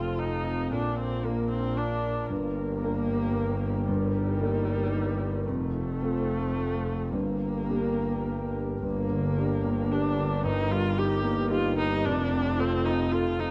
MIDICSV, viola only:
0, 0, Header, 1, 2, 480
1, 0, Start_track
1, 0, Key_signature, -2, "minor"
1, 0, Tempo, 529568
1, 648, Time_signature, 3, 2, 24, 8
1, 4968, Tempo, 544959
1, 5928, Tempo, 567108
1, 7848, Tempo, 536673
1, 12024, End_track
2, 0, Start_track
2, 0, Title_t, "Viola"
2, 0, Program_c, 0, 41
2, 0, Note_on_c, 0, 65, 44
2, 166, Note_on_c, 0, 63, 50
2, 179, Note_off_c, 0, 65, 0
2, 648, Note_off_c, 0, 63, 0
2, 654, Note_on_c, 0, 62, 47
2, 885, Note_off_c, 0, 62, 0
2, 891, Note_on_c, 0, 60, 55
2, 1133, Note_on_c, 0, 58, 52
2, 1146, Note_off_c, 0, 60, 0
2, 1357, Note_off_c, 0, 58, 0
2, 1362, Note_on_c, 0, 60, 55
2, 1606, Note_on_c, 0, 62, 51
2, 1619, Note_off_c, 0, 60, 0
2, 2086, Note_off_c, 0, 62, 0
2, 2090, Note_on_c, 0, 58, 60
2, 3484, Note_off_c, 0, 58, 0
2, 3522, Note_on_c, 0, 55, 66
2, 4931, Note_off_c, 0, 55, 0
2, 4966, Note_on_c, 0, 57, 62
2, 6366, Note_off_c, 0, 57, 0
2, 6401, Note_on_c, 0, 58, 56
2, 7637, Note_off_c, 0, 58, 0
2, 7847, Note_on_c, 0, 58, 57
2, 8811, Note_on_c, 0, 62, 58
2, 8825, Note_off_c, 0, 58, 0
2, 9288, Note_off_c, 0, 62, 0
2, 9294, Note_on_c, 0, 63, 67
2, 9524, Note_on_c, 0, 65, 79
2, 9538, Note_off_c, 0, 63, 0
2, 9761, Note_on_c, 0, 67, 69
2, 9774, Note_off_c, 0, 65, 0
2, 10227, Note_off_c, 0, 67, 0
2, 10232, Note_on_c, 0, 65, 82
2, 10471, Note_off_c, 0, 65, 0
2, 10480, Note_on_c, 0, 63, 83
2, 10721, Note_on_c, 0, 62, 73
2, 10735, Note_off_c, 0, 63, 0
2, 11208, Note_on_c, 0, 60, 75
2, 11222, Note_off_c, 0, 62, 0
2, 11441, Note_on_c, 0, 63, 73
2, 11454, Note_off_c, 0, 60, 0
2, 11677, Note_on_c, 0, 65, 75
2, 11690, Note_off_c, 0, 63, 0
2, 11923, Note_on_c, 0, 63, 66
2, 11936, Note_off_c, 0, 65, 0
2, 12024, Note_off_c, 0, 63, 0
2, 12024, End_track
0, 0, End_of_file